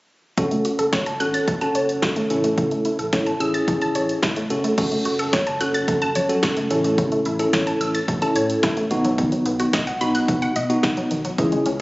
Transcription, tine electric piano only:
0.38 0.96 C#4 medium
0.38 0.96 F#4 medium
0.38 0.96 A4 medium
1.20 1.49 C#4 medium
1.20 1.49 F#4 medium
1.20 1.49 A4 medium
1.61 2.29 C#4 medium
1.61 2.30 F#4 medium
1.61 2.29 A4 medium
2.30 2.96 C#4 medium
2.30 2.96 E4 medium
2.30 2.96 A4 medium
3.13 3.32 C#4 medium
3.13 3.32 E4 medium
3.13 3.32 A4 medium
3.40 4.19 C#4 medium
3.40 4.19 E4 medium
3.40 4.19 G#4 medium
4.50 4.72 C#4 medium
4.50 4.72 F#4 medium
4.50 4.72 A4 medium
4.78 5.37 C#4 medium
4.78 5.37 F#4 medium
4.78 5.37 A4 medium
5.61 6.09 C#4 medium
5.61 6.09 F#4 medium
5.61 6.09 A4 medium
6.29 6.69 C#4 medium
6.29 6.71 F#4 medium
6.29 6.69 A4 medium
6.71 7.26 C#4 medium
6.71 7.26 E4 medium
6.71 7.26 A4 medium
7.40 7.98 C#4 medium
7.40 7.98 E4 medium
7.40 7.98 A4 medium
8.22 8.90 C#4 medium
8.22 8.90 E4 medium
8.22 8.90 A4 medium
8.91 9.79 B3 medium
8.91 9.79 D#4 medium
8.91 9.79 F#4 loud
10.01 10.50 B3 medium
10.01 10.50 D#4 medium
10.01 10.50 F#4 medium
10.70 11.19 B3 medium
10.70 11.19 D#4 medium
10.70 11.19 F#4 medium
11.38 11.68 C#4 medium
11.38 11.68 E4 medium
11.38 11.68 G#4 medium

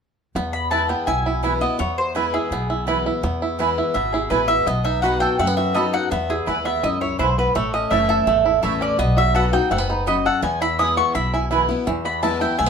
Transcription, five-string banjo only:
0.36 0.89 B3 medium
0.72 1.07 E4 medium
0.90 1.62 B3 medium
1.07 1.26 E4 medium
1.26 1.43 E4 medium
1.44 2.16 E4 medium
1.62 1.79 B3 soft
1.80 2.52 B3 medium
2.16 2.33 E4 medium
2.34 2.69 E4 medium
2.52 3.23 B3 medium
2.70 2.87 E4 medium
2.88 3.05 E4 medium
3.06 3.41 E4 medium
3.24 3.95 B3 medium
3.42 3.59 E4 medium
3.60 3.77 E4 medium
3.78 4.13 E4 medium
3.96 4.67 B3 medium
4.14 4.30 E4 medium
4.31 4.48 E4 medium
4.49 4.67 E4 medium
4.67 5.25 B3 medium
4.85 5.35 D#4 medium
5.03 5.54 F#4 medium
5.22 5.72 A4 medium
5.40 5.47 A3 medium
5.47 5.75 B3 medium
5.58 6.08 F#4 medium
5.75 6.11 A4 medium
5.94 6.11 D#4 medium
6.12 6.62 B3 medium
6.30 6.47 E4 soft
6.47 6.82 E4 medium
6.66 7.16 B3 medium
6.83 7.00 E4 medium
7.02 7.18 E4 medium
7.19 7.55 E4 medium
7.38 7.55 B3 medium
7.56 8.06 A3 medium
7.74 8.24 C#4 soft
7.92 8.42 E4 medium
8.10 8.60 A4 medium
8.27 8.78 A3 medium
8.45 8.95 E4 medium
8.63 8.99 A4 medium
8.81 8.99 C#4 medium
8.99 9.70 B3 medium
9.17 9.67 F#4 soft
9.35 9.85 A4 medium
9.53 9.88 D#4 medium
9.71 9.78 A3 medium
9.78 10.07 B3 medium
9.90 10.40 D#4 medium
10.07 10.43 F#4 medium
10.26 10.43 A4 medium
10.43 10.94 B3 medium
10.61 10.78 E4 medium
10.79 11.13 E4 medium
10.97 11.47 B3 medium
11.15 11.32 E4 medium
11.34 11.50 E4 medium
11.51 11.87 E4 medium
11.69 11.87 B3 soft
11.87 12.70 E3 medium
12.05 12.58 B3 medium
12.23 12.41 E4 medium
12.41 12.70 E4 medium
12.59 12.66 A3 medium
12.66 12.70 B3 medium

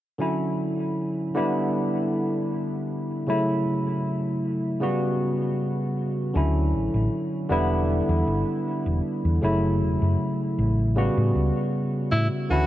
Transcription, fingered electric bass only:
6.35 6.74 D2 loud
6.74 6.88 A1 medium
6.94 7.07 A1 medium
7.50 8.00 E1 medium
8.09 8.22 E2 loud
8.27 8.42 G1 medium
8.86 8.99 E1 loud
9.25 9.38 E2 medium
9.43 9.82 F#1 loud
9.82 9.96 E1 medium
10.02 10.15 F#2 medium
10.58 11.08 A1 medium
11.17 11.30 A2 loud
11.35 11.50 C#2 medium
12.12 12.27 A2 medium
12.50 12.67 D2 loud

